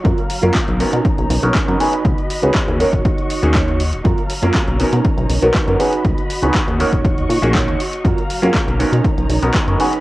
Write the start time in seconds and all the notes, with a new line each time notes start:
Already playing: F#3
0.04 F#2 F4 F#4 A#4 F5 A#5, kick, closed hi-hat
0.18 closed hi-hat
0.29 muted clean electric guitar stroke, open hi-hat
0.42 F#2 F#3 A#3 C#4 F4 F#4 A#4 F5, closed hi-hat
0.54 kick, clap, closed hi-hat
0.68 B1, closed hi-hat
0.79 B3 C#4 D#4 F#4 A#4 C#5, open hi-hat
0.93 B2, closed hi-hat
1.05 B1, kick, closed hi-hat
1.18 B1, closed hi-hat
1.30 B1, open hi-hat
1.43 B1 B3 C#4 D#4 F#4 A#4, closed hi-hat
1.54 C#4 D#4 A#4, kick, clap, closed hi-hat
1.68 F#2 B3 C#4 D#4 F#4 A#4, closed hi-hat
1.79 B3 C#4 D#4 F#4 G#4 B4 D#5 B5, open hi-hat
1.93 closed hi-hat
2.05 C#2, kick, closed hi-hat
2.18 closed hi-hat
2.29 muted clean electric guitar stroke, open hi-hat
2.42 C#2 B3 C#4 D#4 F#4 G#4 B4, closed hi-hat
2.54 kick, clap, closed hi-hat
2.68 D#2, closed hi-hat
2.79 A#3 C#4 D#4 F#4 A#4 C#5 D#5 C#6, open hi-hat
2.93 D#1, kick, closed hi-hat
3.05 kick, closed hi-hat
3.18 closed hi-hat
3.30 open hi-hat
3.42 D#2 A#3 C#4 D#4 F#4 G#4, closed hi-hat
3.54 A#3 C#4 D#4 F#4 A#4 C#5, kick, clap, closed hi-hat
3.68 closed hi-hat
3.80 open hi-hat
3.93 D#1, closed hi-hat
4.04 F#2 F#3 F4 F#4 A#4 F5 A#5, kick, closed hi-hat
4.18 closed hi-hat
4.29 muted clean electric guitar stroke, open hi-hat
4.42 F#2 F#3 A#3 C#4 F4 F#4 A#4 F5, closed hi-hat
4.54 kick, clap, closed hi-hat
4.67 B1, closed hi-hat
4.79 B3 C#4 D#4 F#4 A#4 C#5, open hi-hat
4.93 B2, closed hi-hat
5.05 B1, kick, closed hi-hat
5.17 B1, closed hi-hat
5.30 B1, open hi-hat
5.42 B1 B3 C#4 D#4 F#4 A#4, closed hi-hat
5.54 C#4 D#4 A#4, kick, clap, closed hi-hat
5.67 F#2 B3 C#4 D#4 F#4 A#4, closed hi-hat
5.79 B3 C#4 D#4 F#4 G#4 B4 D#5 B5, open hi-hat
5.93 closed hi-hat
6.05 C#2, kick, closed hi-hat
6.18 closed hi-hat
6.29 muted clean electric guitar stroke, open hi-hat
6.42 C#2 B3 C#4 D#4 F#4 G#4 B4, closed hi-hat
6.54 kick, clap, closed hi-hat
6.68 D#2, closed hi-hat
6.79 A#3 C#4 D#4 F#4 A#4 C#5 D#5 C#6, open hi-hat
6.93 D#1, kick, closed hi-hat
7.05 kick, closed hi-hat
7.18 D#2, closed hi-hat
7.29 A#2, open hi-hat
7.42 A#1 A#3 C#4 D#4 F#4 G#4, closed hi-hat
7.54 A#3 C#4 D#4 F#4 C#5, kick, clap, closed hi-hat
7.67 D#2, closed hi-hat
7.80 open hi-hat
7.93 closed hi-hat
8.04 F#2 F#3 F4 F#4 A#4 F5 A#5, kick, closed hi-hat
8.18 closed hi-hat
8.29 muted clean electric guitar stroke, open hi-hat
8.42 F#2 F#3 A#3 C#4 F4 F#4 G#4 A#4 F5, closed hi-hat
8.55 kick, clap, closed hi-hat
8.67 B1, closed hi-hat
8.79 B3 C#4 D#4 F#4 A#4 C#5 A#5, open hi-hat
8.92 B2, closed hi-hat
9.04 B1, kick, closed hi-hat
9.17 B1, closed hi-hat
9.29 B1, open hi-hat
9.42 B1 B3 C#4 D#4 F#4 A#4, closed hi-hat
9.54 C#4 D#4 A#4, kick, clap, closed hi-hat
9.67 F#2 B3 C#4 D#4 F#4 A#4, closed hi-hat
9.79 F#3 B3 C#4 D#4 F#4 G#4 B4 D#5 B5, open hi-hat
9.93 closed hi-hat